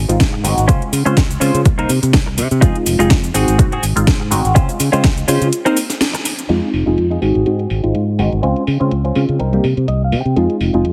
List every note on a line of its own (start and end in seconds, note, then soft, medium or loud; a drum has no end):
0.08 0.17 G#1 medium
0.08 0.29 G#3 medium
0.08 0.29 C4 medium
0.08 0.29 D#4 medium
0.08 0.29 F4 medium
0.08 muted clean electric guitar stroke soft
0.08 closed hi-hat soft
0.08 shaker soft
0.20 0.45 G#2 medium
0.20 kick loud
0.20 snare loud
0.20 closed hi-hat medium
0.20 shaker soft
0.33 muted clean electric guitar stroke medium
0.44 0.54 G#1 loud
0.44 0.66 G#3 medium
0.44 0.66 C4 medium
0.44 0.66 D#4 medium
0.44 0.66 F#4 loud
0.44 muted clean electric guitar stroke soft
0.44 open hi-hat loud
0.44 shaker medium
0.57 0.66 G#1 medium
0.57 closed hi-hat soft
0.57 shaker soft
0.68 0.89 G#3 loud
0.68 0.89 C4 medium
0.68 0.81 C#4 loud
0.68 0.89 C#4 medium
0.68 0.82 F4 medium
0.68 0.89 F4 loud
0.68 0.82 C5 loud
0.68 kick loud
0.68 closed hi-hat medium
0.68 shaker soft
0.82 closed hi-hat soft
0.92 1.03 C#3 medium
0.92 muted clean electric guitar stroke soft
0.92 open hi-hat loud
0.92 shaker medium
1.05 1.14 C#3 medium
1.05 1.17 G#3 medium
1.05 1.18 C4 medium
1.05 1.17 C#4 medium
1.05 1.18 C#4 medium
1.05 1.17 F4 medium
1.05 1.18 F4 loud
1.05 1.17 C5 medium
1.05 closed hi-hat soft
1.05 shaker soft
1.17 1.36 C#2 medium
1.17 kick loud
1.17 snare loud
1.17 closed hi-hat medium
1.17 shaker soft
1.30 muted clean electric guitar stroke soft
1.30 closed hi-hat soft
1.30 shaker soft
1.40 1.51 C#3 medium
1.40 1.62 G#3 medium
1.40 1.62 C4 medium
1.40 1.59 C#4 medium
1.40 1.62 C#4 medium
1.40 1.60 F4 medium
1.40 1.62 F4 loud
1.40 1.60 C5 medium
1.40 open hi-hat loud
1.40 shaker medium
1.54 1.63 C#3 medium
1.54 closed hi-hat medium
1.54 shaker soft
1.65 kick loud
1.65 closed hi-hat medium
1.65 shaker soft
1.78 1.90 A#3 medium
1.78 1.89 C4 loud
1.78 1.90 C4 medium
1.78 1.90 D#4 medium
1.78 1.89 D#4 loud
1.78 1.90 A#4 loud
1.78 1.90 C5 loud
1.78 closed hi-hat soft
1.89 1.99 C3 medium
1.89 open hi-hat medium
1.89 shaker medium
2.02 2.11 C3 medium
2.02 muted clean electric guitar stroke soft
2.02 closed hi-hat medium
2.02 shaker soft
2.13 kick loud
2.13 snare loud
2.13 open hi-hat medium
2.13 shaker soft
2.26 muted clean electric guitar stroke medium
2.37 2.48 C3 medium
2.37 muted clean electric guitar stroke soft
2.37 open hi-hat loud
2.37 shaker medium
2.51 2.59 C3 loud
2.51 closed hi-hat soft
2.51 shaker soft
2.61 2.96 G#3 medium
2.61 2.96 C4 medium
2.61 2.75 D#4 loud
2.61 2.96 D#4 medium
2.61 2.75 F4 medium
2.61 2.97 F4 loud
2.61 2.76 G#4 loud
2.61 kick loud
2.61 closed hi-hat medium
2.61 shaker soft
2.76 closed hi-hat soft
2.86 2.96 F1 medium
2.86 muted clean electric guitar stroke soft
2.86 open hi-hat loud
2.86 shaker medium
2.99 3.08 F1 medium
2.99 3.19 G#3 medium
2.99 3.19 C4 medium
2.99 3.10 D#4 medium
2.99 3.20 D#4 medium
2.99 3.11 F4 medium
2.99 3.20 F4 loud
2.99 3.11 G#4 medium
2.99 closed hi-hat soft
2.99 shaker soft
3.10 3.29 F2 medium
3.10 kick loud
3.10 snare loud
3.10 closed hi-hat medium
3.10 shaker soft
3.24 muted clean electric guitar stroke soft
3.24 closed hi-hat soft
3.24 shaker soft
3.34 3.45 G#1 medium
3.34 3.56 G#3 medium
3.34 3.56 C4 medium
3.34 3.64 C4 medium
3.34 3.56 D#4 medium
3.34 3.56 F#4 medium
3.34 3.64 F#4 medium
3.34 3.65 G#4 loud
3.34 open hi-hat medium
3.34 shaker medium
3.48 3.56 G#1 medium
3.48 closed hi-hat medium
3.48 shaker soft
3.58 3.78 G#2 medium
3.58 3.73 G#3 medium
3.58 3.73 C4 medium
3.58 3.73 D#4 medium
3.58 3.73 F#4 medium
3.58 kick loud
3.58 closed hi-hat medium
3.58 shaker soft
3.72 3.83 C4 loud
3.72 3.83 F#4 loud
3.72 3.84 G#4 loud
3.72 closed hi-hat soft
3.83 3.93 G#1 medium
3.83 open hi-hat medium
3.83 shaker medium
3.96 4.04 G#1 medium
3.96 4.16 G#3 medium
3.96 4.16 C4 medium
3.96 4.16 D#4 medium
3.96 4.16 F4 medium
3.96 muted clean electric guitar stroke soft
3.96 closed hi-hat medium
3.96 shaker soft
4.07 4.33 G#2 medium
4.07 kick loud
4.07 snare loud
4.07 closed hi-hat medium
4.07 shaker soft
4.20 muted clean electric guitar stroke medium
4.31 4.41 G#1 loud
4.31 4.53 G#3 medium
4.31 4.53 C4 medium
4.31 4.53 D#4 medium
4.31 4.53 F#4 loud
4.31 muted clean electric guitar stroke soft
4.31 open hi-hat loud
4.31 shaker medium
4.44 4.53 G#1 loud
4.44 closed hi-hat soft
4.44 shaker soft
4.55 4.76 G#3 loud
4.55 4.76 C4 medium
4.55 4.69 C#4 loud
4.55 4.76 C#4 medium
4.55 4.69 F4 loud
4.55 4.77 F4 loud
4.55 4.69 C5 loud
4.55 kick loud
4.55 closed hi-hat medium
4.55 shaker soft
4.69 closed hi-hat soft
4.69 shaker soft
4.79 4.90 C#3 medium
4.79 muted clean electric guitar stroke soft
4.79 open hi-hat loud
4.79 shaker medium
4.92 5.01 C#3 medium
4.92 5.04 G#3 loud
4.92 5.05 C4 medium
4.92 5.04 C#4 medium
4.92 5.05 C#4 medium
4.92 5.04 F4 medium
4.92 5.05 F4 loud
4.92 5.04 C5 medium
4.92 closed hi-hat soft
4.92 shaker soft
5.04 5.23 C#2 medium
5.04 kick loud
5.04 snare loud
5.04 closed hi-hat medium
5.04 shaker soft
5.17 muted clean electric guitar stroke soft
5.17 closed hi-hat soft
5.17 shaker soft
5.27 5.38 C#3 medium
5.27 5.49 G#3 medium
5.27 5.49 C4 medium
5.27 5.47 C#4 medium
5.27 5.49 C#4 medium
5.27 5.49 F4 medium
5.27 5.47 F4 medium
5.27 5.47 C5 medium
5.27 open hi-hat loud
5.27 shaker medium
5.41 5.50 C#3 medium
5.41 closed hi-hat medium
5.41 shaker soft
5.53 closed hi-hat medium
5.53 shaker soft
5.65 5.77 A#3 loud
5.65 5.76 C4 loud
5.65 5.77 C4 medium
5.65 5.77 D#4 loud
5.65 5.77 D#4 medium
5.65 5.77 A#4 loud
5.65 5.78 C5 loud
5.65 closed hi-hat soft
5.65 shaker soft
5.77 open hi-hat loud
5.77 shaker medium
5.90 muted clean electric guitar stroke soft
5.90 snare soft
5.90 closed hi-hat medium
5.90 shaker soft
6.01 snare loud
6.01 open hi-hat medium
6.01 shaker soft
6.13 muted clean electric guitar stroke medium
6.13 closed hi-hat soft
6.13 shaker soft
6.25 muted clean electric guitar stroke soft
6.25 open hi-hat loud
6.25 shaker medium
6.39 closed hi-hat soft
6.39 shaker soft
6.49 6.59 F2 medium
6.49 6.83 G#3 medium
6.49 6.84 C4 medium
6.49 6.68 D#4 medium
6.49 6.84 D#4 medium
6.49 6.68 F4 medium
6.49 6.84 F4 loud
6.49 6.68 G#4 loud
6.49 closed hi-hat medium
6.49 crash medium
6.63 closed hi-hat soft
6.73 6.83 F1 medium
6.73 open hi-hat medium
6.86 6.95 F1 medium
6.86 7.06 G#3 medium
6.86 7.07 C4 medium
6.86 6.97 D#4 medium
6.86 7.07 D#4 medium
6.86 6.98 F4 medium
6.86 7.07 F4 medium
6.86 6.98 G#4 medium
6.86 closed hi-hat soft
6.98 7.16 F2 medium
6.98 closed hi-hat medium
7.10 7.21 D#4 medium
7.10 7.21 F4 medium
7.10 7.21 G#4 medium
7.10 closed hi-hat soft
7.21 7.32 G#1 medium
7.21 7.43 G#3 medium
7.21 7.81 C4 medium
7.21 7.43 C4 medium
7.21 7.44 D#4 medium
7.21 7.81 F#4 medium
7.21 7.44 F#4 medium
7.21 7.81 G#4 medium
7.21 open hi-hat medium
7.35 7.43 G#1 medium
7.35 closed hi-hat soft
7.46 7.65 G#2 medium
7.46 7.60 G#3 medium
7.46 7.60 C4 medium
7.46 7.60 D#4 medium
7.46 7.60 F#4 medium
7.46 closed hi-hat medium
7.59 closed hi-hat soft
7.70 7.80 G#1 medium
7.70 open hi-hat medium
7.83 7.92 G#1 medium
7.83 8.03 G#3 medium
7.83 8.03 C4 medium
7.83 8.04 D#4 medium
7.83 8.04 F4 medium
7.83 closed hi-hat medium
7.94 8.21 G#2 medium
7.94 muted clean electric guitar stroke soft
7.94 closed hi-hat medium
8.18 8.29 G#1 medium
8.18 8.40 G#3 medium
8.18 8.40 C4 medium
8.18 8.40 D#4 medium
8.18 8.41 F#4 loud
8.18 muted clean electric guitar stroke soft
8.18 open hi-hat medium
8.32 8.40 G#1 medium
8.32 closed hi-hat soft
8.42 8.53 C#2 medium
8.42 8.63 G#3 medium
8.42 8.64 C4 medium
8.42 8.61 C#4 loud
8.42 8.64 C#4 medium
8.42 8.62 F4 medium
8.42 8.64 F4 loud
8.42 8.62 C5 loud
8.42 closed hi-hat medium
8.56 closed hi-hat soft
8.67 8.77 C#3 medium
8.67 open hi-hat loud
8.80 8.89 C#3 medium
8.80 8.92 G#3 medium
8.80 8.92 C4 medium
8.80 8.91 C#4 medium
8.80 8.92 C#4 medium
8.80 8.91 F4 medium
8.80 8.92 F4 loud
8.80 8.92 C5 medium
8.80 closed hi-hat soft
8.91 9.10 C#2 medium
8.91 closed hi-hat medium
9.04 9.22 C#4 medium
9.04 9.22 F4 medium
9.04 9.23 C5 medium
9.04 closed hi-hat soft
9.15 9.26 C#3 medium
9.15 9.36 G#3 medium
9.15 9.36 C4 medium
9.15 9.36 C#4 medium
9.15 9.36 F4 medium
9.15 open hi-hat medium
9.29 9.37 C#3 medium
9.29 closed hi-hat soft
9.39 9.58 C2 medium
9.39 9.64 C4 medium
9.39 9.64 D#4 medium
9.39 9.64 A#4 medium
9.39 closed hi-hat medium
9.52 9.64 G3 medium
9.52 9.65 A#3 medium
9.52 9.65 C4 medium
9.52 9.65 G4 loud
9.52 closed hi-hat soft
9.64 9.74 C3 medium
9.64 open hi-hat medium
9.77 9.85 C3 medium
9.77 closed hi-hat soft
9.87 10.14 C2 medium
9.87 10.03 D#5 medium
9.87 muted clean electric guitar stroke soft
9.87 closed hi-hat medium
10.04 10.19 F5 medium
10.12 10.22 C3 medium
10.12 muted clean electric guitar stroke soft
10.12 open hi-hat loud
10.21 10.35 G5 medium
10.25 10.34 C3 medium
10.25 closed hi-hat soft
10.36 10.46 F2 medium
10.36 10.71 G#3 medium
10.36 10.71 C4 medium
10.36 10.55 D#4 medium
10.36 10.71 D#4 medium
10.36 10.71 F4 loud
10.36 10.55 F4 medium
10.36 10.56 G#4 loud
10.36 closed hi-hat medium
10.50 closed hi-hat soft
10.60 10.70 F1 medium
10.60 open hi-hat loud
10.74 10.82 F1 medium
10.74 10.93 G#3 medium
10.74 10.93 C4 medium
10.74 10.85 D#4 medium
10.74 10.93 D#4 medium
10.74 10.85 F4 medium
10.74 10.93 F4 medium
10.74 10.85 G#4 medium
10.74 closed hi-hat soft
10.85 10.93 F2 medium
10.85 closed hi-hat medium